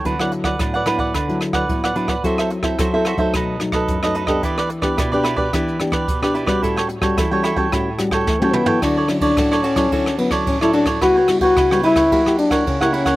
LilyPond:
<<
  \new Staff \with { instrumentName = "Cavaquinho" } { \time 4/4 \key d \major \tempo 4 = 109 <d' b' d'' fis''>16 <b' d'' fis''>16 r16 <b' d'' fis''>16 <d' b' d'' fis''>16 <b' d'' fis''>16 <d' b' d'' fis''>16 <b' d'' fis''>16 <d' b' d'' fis''>8 r16 <b' d'' fis''>8 <b' d'' fis''>16 <d' b' d'' fis''>16 <b' d'' fis''>16 | <fis' a' c'' e''>16 <a' c'' e''>16 r16 <a' c'' e''>16 <fis' a' c'' e''>16 <a' c'' e''>16 <fis' a' c'' e''>16 <a' c'' e''>16 <dis' a' b' dis''>8 r16 <a' b' dis''>8 <a' b' dis''>16 <dis' a' b' dis''>16 <a' b' dis''>16 | <e' g' b' d''>16 <g' b' d''>16 r16 <g' b' d''>16 <e' g' b' d''>16 <g' b' d''>16 <e' g' b' d''>16 <g' b' d''>16 <e' g' b' d''>8 r16 <g' b' d''>8 <g' b' d''>16 <e' g' b' d''>16 <g' b' d''>16 | <e' a' cis'' g''>16 <a' cis'' g''>16 r16 <a' cis'' g''>16 <e' a' cis'' g''>16 <a' cis'' g''>16 <e' a' cis'' g''>16 <a' cis'' g''>16 <e' a' cis'' g''>8 r16 <a' cis'' g''>8 <a' cis'' g''>16 <e' a' cis'' g''>16 <a' cis'' g''>16 |
<fis' a' cis'' d''>16 <a' cis'' d''>16 r16 <a' cis'' d''>16 <fis' a' cis'' d''>16 <a' cis'' d''>16 <fis' a' cis'' d''>16 <a' cis'' d''>16 <fis' a' cis'' d''>8 r16 <a' cis'' d''>8 <a' cis'' d''>16 <fis' a' cis'' d''>16 <a' cis'' d''>16 | <e' b' cis'' g''>16 <b' cis'' g''>16 r16 <b' cis'' g''>16 <e' b' cis'' g''>16 <b' cis'' g''>16 <e' b' cis'' g''>16 <b' cis'' g''>16 <e' ais' cis'' fis''>8 r16 <ais' cis'' fis''>8 <ais' cis'' fis''>16 <e' ais' cis'' fis''>16 <ais' cis'' fis''>16 | }
  \new Staff \with { instrumentName = "Trombone" } { \time 4/4 \key d \major r1 | r1 | r1 | r2. a16 cis'16 b8 |
d'8. d'8. cis'4 b8 cis'16 e'16 d'8 | fis'8. fis'8. e'4 d'8 cis'16 e'16 cis'8 | }
  \new Staff \with { instrumentName = "Nylon-string guitar" } { \time 4/4 \key d \major << { <fis b e'>16 <fis b e'>8. <fis b e'>8 <fis b e'>8 r16 <fis b e'>8. <fis b e'>8 <fis b e'>16 r16 | <c' e' a'>8. <c' e' a'>8 <c' e' a'>8 <fis a ees'>8. <fis a dis'>8. <fis a dis'>8 <b d' g'>16~ | <b d' g'>8. <b d' g'>8 <b d' g'>8 <b d' g'>16 <b d' g'>8 <b d' g'>8 r16 <b d' g'>8 <g cis' fis'>16~ | <g cis' fis'>8. <g cis' fis'>8 <g cis' fis'>8 <g cis' fis'>16 <g cis' fis'>16 r16 <g cis' fis'>8 r16 <g cis' fis'>8 <fis e'>16~ |
<fis e'>8 <fis cis' e'>8 <fis cis' e'>8 r16 <fis cis' e'>16 <fis cis' e'>16 r16 <fis cis' e'>8. <fis cis' e'>8. | <g b e'>16 r16 <g b e'>8. <g b e'>16 <g b e'>16 r16 <ais e' g'>16 <ais e' g'>4 <ais e' g'>8. | } \\ { d4 a,4 d4 a,4 | fis4 fis4 b,4 fis,4 | e4 b,4 e4 r4 | a,4 e4 a,4 e4 |
d4 a,4 d4 a,4 | cis4 cis4 fis4 cis4 | } >> }
  \new DrumStaff \with { instrumentName = "Drums" } \drummode { \time 4/4 <hh bd>16 ss16 hh16 <bd ss>16 <hh bd ss>16 hh16 <hh ss>16 <hh bd>16 <hh bd ss>16 hh16 <hh ss>16 <hh bd ss>16 <hh bd>16 <hh ss>16 hh16 <hh bd ss>16 | <hh bd>16 ss16 hh16 <bd ss>16 <hh bd ss>8 <hh ss>16 <hh bd>16 <hh bd ss>8 <hh ss>16 <hh bd ss>16 <hh bd>16 <hh ss>16 hh16 <bd ss>16 | <hh bd>16 ss16 hh16 <bd ss>16 <hh bd ss>16 hh16 <hh ss>16 <hh bd>16 <hh bd ss>16 hh16 <hh ss>16 <hh bd ss>16 <hh bd>16 <hh ss>16 hh16 <hh bd ss>16 | <hh bd>16 ss16 hh16 <bd ss>16 <hh bd ss>8 <hh ss>16 <hh bd>16 <hh bd ss>8 <hh ss>16 <hh bd ss>16 <bd sn>16 tommh16 toml16 tomfh16 |
<bd cymr ss>8 <cymr ss>16 <bd cymr>16 <bd cymr ss>16 ss16 cymr16 <bd cymr ss>16 <bd cymr>16 ss16 cymr16 <bd cymr ss>16 <bd cymr>16 ss16 cymr16 <bd cymr ss>16 | <bd cymr ss>8 <cymr ss>16 <bd cymr>16 <bd cymr ss>16 ss16 cymr16 <bd cymr ss>16 <bd cymr>16 ss16 cymr16 <bd cymr ss>16 <bd cymr>16 ss16 cymr16 <bd cymr ss>16 | }
>>